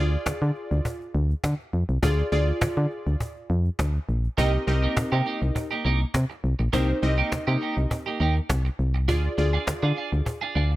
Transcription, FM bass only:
0, 0, Header, 1, 2, 480
1, 0, Start_track
1, 0, Tempo, 588235
1, 1654, Time_signature, 4, 2, 24, 8
1, 8782, End_track
2, 0, Start_track
2, 0, Title_t, "FM bass"
2, 0, Program_c, 0, 39
2, 0, Note_on_c, 0, 38, 102
2, 137, Note_off_c, 0, 38, 0
2, 215, Note_on_c, 0, 50, 49
2, 266, Note_off_c, 0, 50, 0
2, 341, Note_on_c, 0, 50, 99
2, 418, Note_off_c, 0, 50, 0
2, 581, Note_on_c, 0, 38, 97
2, 658, Note_off_c, 0, 38, 0
2, 934, Note_on_c, 0, 38, 98
2, 1097, Note_off_c, 0, 38, 0
2, 1173, Note_on_c, 0, 50, 102
2, 1260, Note_off_c, 0, 50, 0
2, 1415, Note_on_c, 0, 41, 92
2, 1501, Note_off_c, 0, 41, 0
2, 1541, Note_on_c, 0, 36, 97
2, 1618, Note_off_c, 0, 36, 0
2, 1654, Note_on_c, 0, 38, 119
2, 1817, Note_off_c, 0, 38, 0
2, 1894, Note_on_c, 0, 38, 103
2, 2057, Note_off_c, 0, 38, 0
2, 2135, Note_on_c, 0, 50, 49
2, 2186, Note_off_c, 0, 50, 0
2, 2262, Note_on_c, 0, 50, 101
2, 2338, Note_off_c, 0, 50, 0
2, 2502, Note_on_c, 0, 38, 89
2, 2578, Note_off_c, 0, 38, 0
2, 2855, Note_on_c, 0, 41, 98
2, 3017, Note_off_c, 0, 41, 0
2, 3094, Note_on_c, 0, 38, 99
2, 3256, Note_off_c, 0, 38, 0
2, 3334, Note_on_c, 0, 34, 90
2, 3497, Note_off_c, 0, 34, 0
2, 3574, Note_on_c, 0, 36, 111
2, 3737, Note_off_c, 0, 36, 0
2, 3814, Note_on_c, 0, 36, 104
2, 3977, Note_off_c, 0, 36, 0
2, 4055, Note_on_c, 0, 48, 50
2, 4106, Note_off_c, 0, 48, 0
2, 4181, Note_on_c, 0, 48, 115
2, 4258, Note_off_c, 0, 48, 0
2, 4421, Note_on_c, 0, 36, 95
2, 4498, Note_off_c, 0, 36, 0
2, 4774, Note_on_c, 0, 36, 94
2, 4937, Note_off_c, 0, 36, 0
2, 5013, Note_on_c, 0, 48, 101
2, 5100, Note_off_c, 0, 48, 0
2, 5254, Note_on_c, 0, 36, 95
2, 5340, Note_off_c, 0, 36, 0
2, 5381, Note_on_c, 0, 34, 93
2, 5458, Note_off_c, 0, 34, 0
2, 5494, Note_on_c, 0, 36, 108
2, 5657, Note_off_c, 0, 36, 0
2, 5734, Note_on_c, 0, 36, 105
2, 5897, Note_off_c, 0, 36, 0
2, 5975, Note_on_c, 0, 48, 49
2, 6026, Note_off_c, 0, 48, 0
2, 6101, Note_on_c, 0, 48, 108
2, 6178, Note_off_c, 0, 48, 0
2, 6341, Note_on_c, 0, 36, 94
2, 6418, Note_off_c, 0, 36, 0
2, 6694, Note_on_c, 0, 39, 99
2, 6857, Note_off_c, 0, 39, 0
2, 6934, Note_on_c, 0, 36, 97
2, 7097, Note_off_c, 0, 36, 0
2, 7174, Note_on_c, 0, 36, 93
2, 7414, Note_on_c, 0, 38, 111
2, 7427, Note_off_c, 0, 36, 0
2, 7577, Note_off_c, 0, 38, 0
2, 7654, Note_on_c, 0, 38, 104
2, 7817, Note_off_c, 0, 38, 0
2, 7895, Note_on_c, 0, 50, 50
2, 7946, Note_off_c, 0, 50, 0
2, 8021, Note_on_c, 0, 50, 101
2, 8098, Note_off_c, 0, 50, 0
2, 8262, Note_on_c, 0, 38, 92
2, 8338, Note_off_c, 0, 38, 0
2, 8614, Note_on_c, 0, 38, 93
2, 8777, Note_off_c, 0, 38, 0
2, 8782, End_track
0, 0, End_of_file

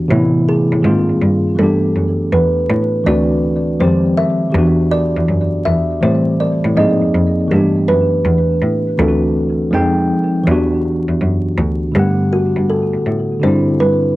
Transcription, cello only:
0, 0, Header, 1, 2, 480
1, 0, Start_track
1, 0, Key_signature, 1, "major"
1, 0, Tempo, 740741
1, 59, Time_signature, 4, 2, 24, 8
1, 9176, End_track
2, 0, Start_track
2, 0, Title_t, "Cello"
2, 0, Program_c, 0, 42
2, 66, Note_on_c, 0, 45, 103
2, 435, Note_off_c, 0, 45, 0
2, 466, Note_on_c, 0, 45, 83
2, 536, Note_off_c, 0, 45, 0
2, 547, Note_on_c, 0, 44, 106
2, 688, Note_off_c, 0, 44, 0
2, 707, Note_on_c, 0, 43, 43
2, 763, Note_off_c, 0, 43, 0
2, 789, Note_on_c, 0, 43, 96
2, 1003, Note_off_c, 0, 43, 0
2, 1028, Note_on_c, 0, 43, 100
2, 1242, Note_off_c, 0, 43, 0
2, 1267, Note_on_c, 0, 42, 79
2, 1482, Note_off_c, 0, 42, 0
2, 1506, Note_on_c, 0, 40, 97
2, 1721, Note_off_c, 0, 40, 0
2, 1746, Note_on_c, 0, 45, 104
2, 1961, Note_off_c, 0, 45, 0
2, 1987, Note_on_c, 0, 38, 101
2, 2437, Note_off_c, 0, 38, 0
2, 2466, Note_on_c, 0, 41, 91
2, 2681, Note_off_c, 0, 41, 0
2, 2944, Note_on_c, 0, 40, 106
2, 3314, Note_off_c, 0, 40, 0
2, 3345, Note_on_c, 0, 40, 90
2, 3416, Note_off_c, 0, 40, 0
2, 3424, Note_on_c, 0, 42, 91
2, 3661, Note_off_c, 0, 42, 0
2, 3665, Note_on_c, 0, 40, 88
2, 3880, Note_off_c, 0, 40, 0
2, 3905, Note_on_c, 0, 45, 101
2, 4274, Note_off_c, 0, 45, 0
2, 4304, Note_on_c, 0, 45, 89
2, 4375, Note_off_c, 0, 45, 0
2, 4385, Note_on_c, 0, 44, 83
2, 4526, Note_off_c, 0, 44, 0
2, 4546, Note_on_c, 0, 41, 45
2, 4603, Note_off_c, 0, 41, 0
2, 4627, Note_on_c, 0, 41, 87
2, 4842, Note_off_c, 0, 41, 0
2, 4867, Note_on_c, 0, 43, 106
2, 5082, Note_off_c, 0, 43, 0
2, 5109, Note_on_c, 0, 42, 91
2, 5323, Note_off_c, 0, 42, 0
2, 5345, Note_on_c, 0, 40, 98
2, 5561, Note_off_c, 0, 40, 0
2, 5586, Note_on_c, 0, 45, 88
2, 5820, Note_off_c, 0, 45, 0
2, 5824, Note_on_c, 0, 38, 105
2, 6276, Note_off_c, 0, 38, 0
2, 6305, Note_on_c, 0, 41, 90
2, 6521, Note_off_c, 0, 41, 0
2, 6785, Note_on_c, 0, 40, 105
2, 7154, Note_off_c, 0, 40, 0
2, 7182, Note_on_c, 0, 40, 82
2, 7254, Note_off_c, 0, 40, 0
2, 7262, Note_on_c, 0, 42, 85
2, 7499, Note_off_c, 0, 42, 0
2, 7502, Note_on_c, 0, 38, 96
2, 7719, Note_off_c, 0, 38, 0
2, 7741, Note_on_c, 0, 43, 117
2, 8112, Note_off_c, 0, 43, 0
2, 8141, Note_on_c, 0, 43, 83
2, 8214, Note_off_c, 0, 43, 0
2, 8381, Note_on_c, 0, 45, 47
2, 8440, Note_off_c, 0, 45, 0
2, 8463, Note_on_c, 0, 45, 87
2, 8680, Note_off_c, 0, 45, 0
2, 8703, Note_on_c, 0, 43, 103
2, 8919, Note_off_c, 0, 43, 0
2, 8943, Note_on_c, 0, 43, 87
2, 9160, Note_off_c, 0, 43, 0
2, 9176, End_track
0, 0, End_of_file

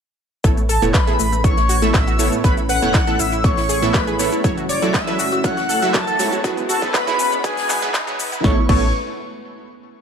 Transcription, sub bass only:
0, 0, Header, 1, 2, 480
1, 0, Start_track
1, 0, Key_signature, 3, "major"
1, 0, Tempo, 500000
1, 425, Time_signature, 4, 2, 24, 8
1, 9613, End_track
2, 0, Start_track
2, 0, Title_t, "Sub bass"
2, 0, Program_c, 0, 38
2, 424, Note_on_c, 0, 33, 96
2, 754, Note_off_c, 0, 33, 0
2, 790, Note_on_c, 0, 28, 100
2, 884, Note_off_c, 0, 28, 0
2, 1143, Note_on_c, 0, 33, 83
2, 1474, Note_off_c, 0, 33, 0
2, 1511, Note_on_c, 0, 33, 95
2, 1832, Note_off_c, 0, 33, 0
2, 1864, Note_on_c, 0, 33, 97
2, 2194, Note_off_c, 0, 33, 0
2, 2343, Note_on_c, 0, 33, 97
2, 2674, Note_off_c, 0, 33, 0
2, 2710, Note_on_c, 0, 28, 102
2, 2804, Note_off_c, 0, 28, 0
2, 3064, Note_on_c, 0, 33, 83
2, 3394, Note_off_c, 0, 33, 0
2, 3431, Note_on_c, 0, 33, 94
2, 3751, Note_off_c, 0, 33, 0
2, 3784, Note_on_c, 0, 33, 97
2, 4114, Note_off_c, 0, 33, 0
2, 4264, Note_on_c, 0, 30, 95
2, 4594, Note_off_c, 0, 30, 0
2, 4631, Note_on_c, 0, 28, 107
2, 4724, Note_off_c, 0, 28, 0
2, 4985, Note_on_c, 0, 30, 83
2, 5314, Note_off_c, 0, 30, 0
2, 5351, Note_on_c, 0, 30, 97
2, 5672, Note_off_c, 0, 30, 0
2, 5704, Note_on_c, 0, 30, 98
2, 6034, Note_off_c, 0, 30, 0
2, 6185, Note_on_c, 0, 32, 99
2, 6514, Note_off_c, 0, 32, 0
2, 6550, Note_on_c, 0, 30, 102
2, 6644, Note_off_c, 0, 30, 0
2, 6905, Note_on_c, 0, 32, 85
2, 7234, Note_off_c, 0, 32, 0
2, 7270, Note_on_c, 0, 32, 94
2, 7591, Note_off_c, 0, 32, 0
2, 7623, Note_on_c, 0, 40, 82
2, 7954, Note_off_c, 0, 40, 0
2, 8104, Note_on_c, 0, 33, 99
2, 8243, Note_off_c, 0, 33, 0
2, 8344, Note_on_c, 0, 33, 99
2, 8568, Note_off_c, 0, 33, 0
2, 9613, End_track
0, 0, End_of_file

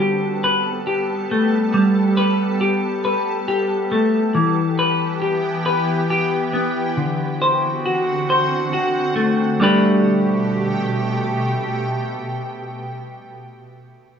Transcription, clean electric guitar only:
0, 0, Header, 1, 2, 480
1, 0, Start_track
1, 0, Key_signature, 1, "major"
1, 0, Tempo, 873362
1, 956, Time_signature, 6, 3, 24, 8
1, 7802, End_track
2, 0, Start_track
2, 0, Title_t, "Clean electric guitar"
2, 0, Program_c, 0, 27
2, 0, Note_on_c, 0, 55, 43
2, 0, Note_on_c, 0, 67, 34
2, 0, Note_on_c, 0, 71, 44
2, 240, Note_off_c, 0, 71, 0
2, 242, Note_on_c, 0, 71, 42
2, 476, Note_off_c, 0, 67, 0
2, 478, Note_on_c, 0, 67, 38
2, 722, Note_on_c, 0, 57, 41
2, 739, Note_off_c, 0, 55, 0
2, 956, Note_on_c, 0, 55, 44
2, 1192, Note_off_c, 0, 71, 0
2, 1194, Note_on_c, 0, 71, 43
2, 1431, Note_off_c, 0, 67, 0
2, 1434, Note_on_c, 0, 67, 40
2, 1668, Note_off_c, 0, 71, 0
2, 1675, Note_on_c, 0, 71, 39
2, 1907, Note_off_c, 0, 67, 0
2, 1914, Note_on_c, 0, 67, 38
2, 1917, Note_off_c, 0, 57, 0
2, 2152, Note_on_c, 0, 57, 39
2, 2154, Note_off_c, 0, 55, 0
2, 2389, Note_on_c, 0, 52, 43
2, 2393, Note_off_c, 0, 57, 0
2, 2393, Note_off_c, 0, 67, 0
2, 2394, Note_off_c, 0, 71, 0
2, 2632, Note_on_c, 0, 71, 38
2, 2867, Note_on_c, 0, 67, 36
2, 3104, Note_off_c, 0, 71, 0
2, 3110, Note_on_c, 0, 71, 38
2, 3348, Note_off_c, 0, 67, 0
2, 3355, Note_on_c, 0, 67, 35
2, 3591, Note_off_c, 0, 52, 0
2, 3591, Note_on_c, 0, 59, 39
2, 3831, Note_on_c, 0, 50, 38
2, 3832, Note_off_c, 0, 59, 0
2, 3832, Note_off_c, 0, 71, 0
2, 3834, Note_off_c, 0, 67, 0
2, 4076, Note_on_c, 0, 72, 36
2, 4317, Note_on_c, 0, 66, 34
2, 4555, Note_off_c, 0, 72, 0
2, 4561, Note_on_c, 0, 72, 39
2, 4792, Note_off_c, 0, 66, 0
2, 4799, Note_on_c, 0, 66, 35
2, 5033, Note_off_c, 0, 50, 0
2, 5033, Note_on_c, 0, 57, 35
2, 5274, Note_off_c, 0, 57, 0
2, 5275, Note_on_c, 0, 55, 51
2, 5277, Note_off_c, 0, 66, 0
2, 5278, Note_off_c, 0, 72, 0
2, 5282, Note_on_c, 0, 57, 47
2, 5287, Note_on_c, 0, 62, 49
2, 5294, Note_on_c, 0, 67, 54
2, 5295, Note_on_c, 0, 71, 50
2, 7316, Note_off_c, 0, 55, 0
2, 7323, Note_off_c, 0, 57, 0
2, 7328, Note_off_c, 0, 62, 0
2, 7335, Note_off_c, 0, 67, 0
2, 7336, Note_off_c, 0, 71, 0
2, 7802, End_track
0, 0, End_of_file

